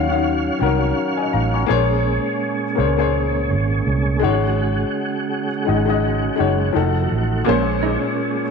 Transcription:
0.00 0.49 D#2 medium
0.00 0.08 D#3 loud
0.00 1.65 F#3 medium
0.00 0.09 C#4 medium
0.00 1.65 C#4 medium
0.00 0.10 F#4 medium
0.00 1.68 G#4 soft
0.00 1.70 C#5 medium
0.00 0.12 F5 loud
0.00 1.65 F5 medium
0.08 0.53 D#3 medium
0.08 0.54 C#4 medium
0.08 0.54 F#4 medium
0.12 0.55 F5 medium
0.58 0.91 C2 loud
0.58 1.55 D#3 medium
0.58 1.56 C#4 medium
0.58 1.56 F#4 medium
0.63 1.57 A#4 medium
1.17 1.32 D#5 medium
1.17 1.31 G#5 medium
1.33 1.63 A1 medium
1.33 1.53 F5 medium
1.33 1.52 A#5 medium
1.54 1.88 G#5 medium
1.54 1.88 C#6 medium
1.66 2.17 A#1 loud
1.66 4.19 A#2 medium
1.66 6.70 G#3 medium
1.66 2.63 A#3 loud
1.66 4.19 C#4 medium
1.66 2.64 G#4 loud
1.66 2.65 C5 medium
1.70 2.65 C#5 loud
2.75 3.53 C#2 medium
2.75 2.94 A#3 medium
2.75 2.95 G#4 medium
2.75 2.96 C5 medium
2.80 2.96 C#5 medium
2.97 4.19 A#3 medium
2.97 4.20 G#4 medium
2.97 4.21 C5 medium
3.01 4.21 C#5 medium
3.51 3.81 G#1 medium
3.87 4.25 C2 medium
4.20 4.83 G#1 loud
4.20 6.72 C#3 medium
4.20 5.47 G#3 loud
4.20 5.48 D#4 medium
4.20 6.72 F#4 medium
4.20 5.49 F#4 medium
4.24 5.50 C#5 loud
5.65 6.28 G#1 medium
5.65 5.83 G#3 medium
5.65 5.84 D#4 medium
5.65 5.85 F#4 medium
5.69 5.85 D#5 medium
5.85 6.31 G#3 medium
5.85 6.32 D#4 medium
5.85 6.33 F#4 medium
5.90 6.33 D#5 medium
6.36 6.73 G#3 medium
6.36 6.73 D#4 medium
6.36 6.74 F#4 medium
6.40 6.70 F#1 medium
6.40 6.75 C#5 medium
6.73 7.06 F1 medium
6.73 7.46 D#3 medium
6.73 7.37 F3 medium
6.73 7.46 A3 medium
6.73 7.38 D#4 medium
6.73 7.46 F#4 medium
6.73 7.39 F#4 medium
6.77 7.39 A4 loud
7.12 7.42 A1 medium
7.45 7.95 A#1 loud
7.45 8.41 A#2 loud
7.45 8.51 A#2 medium
7.45 8.42 G#3 medium
7.45 8.51 G#3 medium
7.45 7.64 A#3 medium
7.45 8.51 C#4 medium
7.45 8.43 C#4 loud
7.49 8.44 C5 loud
7.83 8.00 D#4 medium

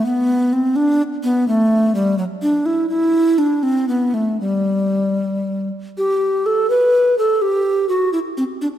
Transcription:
0.06 0.54 B3 medium
0.53 0.77 C4 medium
0.76 1.02 D4 loud
1.23 1.47 B3 loud
1.48 1.94 A3 loud
1.95 2.18 G3 medium
2.18 2.24 F#3 medium
2.42 2.67 D4 medium
2.66 2.89 E4 medium
2.89 3.40 E4 loud
3.38 3.64 D4 medium
3.63 3.88 C4 medium
3.89 4.15 B3 medium
4.14 4.40 A3 medium
4.41 5.69 G3 medium
5.98 6.48 G4 medium
6.46 6.69 A4 medium
6.70 7.17 B4 medium
7.18 7.43 A4 medium
7.42 7.88 G4 medium
7.89 8.12 F#4 medium
8.13 8.19 E4 medium
8.37 8.43 C4 medium
8.61 8.67 D4 medium

